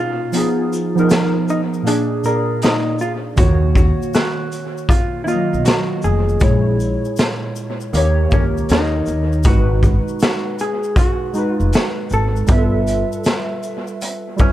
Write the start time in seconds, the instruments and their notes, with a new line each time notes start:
Already playing: synth keys B2 A#3 C#4 D#4 G#4
0.00 hollow-body jazz guitar F4
0.32 synth keys F3 B3 D#4, closed hi-hat, shaker
0.37 synth keys G#4
0.73 shaker
0.95 synth keys F3 B3 D#4, shaker
0.99 synth keys A#4
1.10 snare, closed hi-hat, shaker
1.48 hollow-body jazz guitar D#4, shaker
1.74 shaker
1.82 synth keys A#2 A#3 D4
1.87 hollow-body jazz guitar D4, synth keys G#4, closed hi-hat, shaker
2.23 synth keys A#2 A#3 D5, hollow-body jazz guitar A#4, shaker
2.28 synth keys G#4
2.62 hollow-body jazz guitar D#4, snare, closed hi-hat, shaker
2.99 shaker
3.01 hollow-body jazz guitar F4, shaker
3.36 upright bass D#2, synth keys D#3 A#3 F4, hollow-body jazz guitar F#4, kick, closed hi-hat, shaker
3.40 synth keys C#5
3.45 synth keys F#4
3.75 hollow-body jazz guitar F#4, kick, shaker
4.02 shaker
4.14 hollow-body jazz guitar F#4, snare, closed hi-hat, shaker
4.52 closed hi-hat, shaker
4.78 shaker
4.89 hollow-body jazz guitar F4, kick, closed hi-hat, shaker
5.24 synth keys D#3 A#3 F4, hollow-body jazz guitar E4 F4, shaker
5.29 synth keys D#5
5.34 synth keys F#3
5.53 upright bass B1, shaker
5.65 hollow-body jazz guitar F#4, snare, closed hi-hat, shaker
6.02 upright bass F1, hollow-body jazz guitar G#4, shaker
6.05 shaker
6.29 shaker
6.39 upright bass A#1, synth keys A#2 G#3 E4, kick, closed hi-hat, shaker
6.44 synth keys C#5
6.80 shaker
7.05 shaker
7.17 snare, closed hi-hat, shaker
7.56 shaker
7.81 shaker
7.93 upright bass D#2, synth keys D#3 A#3 G4, closed hi-hat, shaker
7.97 synth keys C#5
8.28 upright bass C#2, synth keys D#3 A#3 G4, kick, shaker
8.32 hollow-body jazz guitar C#4, synth keys A#4
8.57 shaker
8.69 upright bass D#2, hollow-body jazz guitar D#4, snare, closed hi-hat, shaker
9.06 upright bass D#2, shaker
9.08 shaker
9.33 shaker
9.43 upright bass G#1, synth keys G#3 D#4 F#4, hollow-body jazz guitar F#4, kick, closed hi-hat, shaker
9.49 synth keys B4
9.83 kick, shaker
10.08 shaker
10.20 hollow-body jazz guitar F#4, snare, closed hi-hat, shaker
10.59 hollow-body jazz guitar G#4, closed hi-hat, shaker
10.83 shaker
10.96 hollow-body jazz guitar F#4, kick, closed hi-hat, shaker
11.33 synth keys G#3 D#4 F#4, shaker
11.38 synth keys B4
11.52 hollow-body jazz guitar F4
11.60 upright bass F1, shaker
11.73 hollow-body jazz guitar F#4, snare, closed hi-hat, shaker
12.10 upright bass G#1, shaker
12.12 hollow-body jazz guitar A4, shaker
12.36 shaker
12.47 upright bass G1, synth keys G3 F4 A4 B4, kick, closed hi-hat, shaker
12.52 synth keys E5
12.87 closed hi-hat, shaker
13.12 shaker
13.24 snare, closed hi-hat, shaker
13.63 shaker
13.87 shaker
14.01 closed hi-hat, shaker
14.36 upright bass C#2, synth keys G3 F4 A4 B4, kick, shaker
14.40 hollow-body jazz guitar C#4, synth keys E5